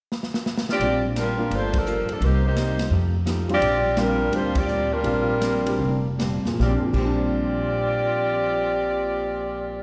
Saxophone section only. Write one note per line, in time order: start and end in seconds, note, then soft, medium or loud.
0.71 1.03 C4 medium
0.71 1.03 F4 medium
0.71 1.03 G4 medium
0.71 1.03 D5 loud
1.19 1.50 G3 medium
1.19 1.50 D4 medium
1.19 1.51 F4 medium
1.19 1.50 A#4 medium
1.53 1.75 A3 medium
1.53 1.75 D4 medium
1.53 1.75 F4 medium
1.53 1.75 C5 medium
1.76 2.10 F3 medium
1.76 2.10 D4 medium
1.76 2.10 A4 medium
1.76 2.10 A#4 medium
2.11 2.23 F3 medium
2.11 2.22 A#3 medium
2.11 2.23 D4 medium
2.11 2.22 A4 medium
2.24 2.45 A#3 medium
2.24 2.45 D#4 medium
2.24 2.45 G4 medium
2.24 2.45 C5 medium
2.46 2.89 A#3 medium
2.46 2.89 D#4 medium
2.46 2.89 G4 medium
2.46 2.89 C5 medium
3.53 3.96 C4 medium
3.53 3.96 F4 loud
3.53 3.95 G4 medium
3.53 3.95 D5 loud
3.98 4.33 G3 medium
3.98 4.32 D4 medium
3.98 4.33 F4 medium
3.98 4.33 A#4 medium
4.34 4.56 G3 medium
4.34 4.56 D4 medium
4.34 4.56 F4 medium
4.34 4.56 C5 medium
4.56 4.93 C4 medium
4.56 4.92 F4 medium
4.56 4.92 G4 medium
4.56 4.92 D5 loud
4.92 6.20 G3 medium
4.92 6.20 D4 medium
4.92 6.20 F4 medium
4.92 6.20 A#4 medium
6.62 6.76 C4 medium
6.62 6.76 F4 medium
6.62 6.76 G4 medium
6.62 6.75 D5 medium
6.96 9.83 C4 medium
6.96 9.83 F4 medium
6.96 9.83 G4 medium
6.96 9.83 D5 medium